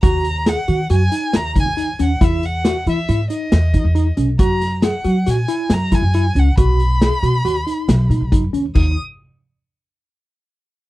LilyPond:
<<
  \new Staff \with { instrumentName = "Violin" } { \time 5/4 \key ees \phrygian \tempo 4 = 138 bes''4 ges''4 aes''4 bes''8 aes''4 ges''8 | e''8 ges''4 e''4 dis''2 r8 | bes''4 ges''4 aes''4 bes''8 aes''4 ges''8 | b''1 r4 |
ees'''8 r1 r8 | }
  \new Staff \with { instrumentName = "Tine electric piano" } { \time 5/4 \key ees \phrygian ges'4 aes'8 ges'8 ges'8 ees'4 ees'8 ees'8 des'8 | e'4 ges'8 e'8 e'8 dis'4 dis'8 dis'8 des'8 | ges'4 aes'8 ges'8 ges'8 fes'4 fes'8 fes'8 des'8 | fis'4 aes'8 fis'8 fis'8 dis'4 dis'8 dis'8 cis'8 |
ees'8 r1 r8 | }
  \new Staff \with { instrumentName = "Upright bass" } { \clef bass \time 5/4 \key ees \phrygian ees,4. ees8 ges,8 r8 ees,8 ees16 ees,8. ees,8 | e,4. e8 gis,8 r8 e,8 e16 e,8. b,,8 | ges,4. ges8 bes,8 r8 ges,8 ges16 ges,8. des,8 | b,,4. b,8 dis,8 r8 b,,8 b,16 b,,16 fis,8 dis,8 |
ees,8 r1 r8 | }
  \new DrumStaff \with { instrumentName = "Drums" } \drummode { \time 5/4 <hh bd>8 hh8 <hh sn>8 hh8 hh8 hh8 <hh sn>8 <hh bd>8 hh8 hh8 | <hh bd>8 hh8 <hh sn>8 hh8 hh8 hh8 <hh sn>8 <hh bd>8 hh8 hh8 | <hh bd>8 <hh sn>8 <hh sn>8 hh8 <hh sn>8 hh8 <hh sn>8 <hh bd sn>8 hh8 hh8 | <hh bd>8 hh8 <hh sn>8 hh8 hh8 hh8 <hh sn>8 hh8 <hh bd>8 hh8 |
<cymc bd>4 r4 r4 r4 r4 | }
>>